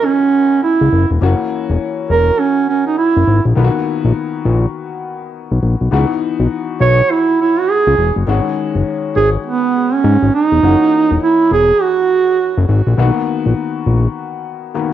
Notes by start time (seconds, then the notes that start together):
Already playing: E3 B3 F4 F#4 D#5
0.05 C#4
0.63 E4
0.81 C#2
0.92 F#1
1.11 E1
1.21 F#1 E3 A#3 C#4 F#4
1.70 E1
2.10 E1 A#4
2.39 C#4
2.69 C#4
2.87 D#4
2.98 E4
3.17 F#1
3.28 G#1
3.46 A#1
3.55 B1 D#3 A#3 B3 F4
3.64 F#4
4.05 A#1
4.45 A#1
5.52 B1
5.63 A#1
5.81 B1
5.91 C#2 E3 B3 D#4 F#4
6.40 B1
6.81 B1 C#5
7.11 E4
7.41 E4
7.59 F#4
7.71 G#4
7.87 C#2
7.98 E1
8.16 F#1
8.27 G#1 D#3 G#3 C#4 F#4
8.75 F#1
9.16 G#1 G#4
9.46 B3
9.94 C#4
10.04 G#2
10.22 G#1
10.34 D#4
10.52 E1
10.62 F#1 E3 A#3 C#4 F#4
11.11 E1
11.23 E4
11.51 E1 G#4
11.82 F#4
12.58 F#1
12.69 G#1
12.87 A#1
12.97 B1 D#3 A#3 B3 F#4
13.46 A#1
13.86 A#1
14.74 D#3 A#3 B3 F#4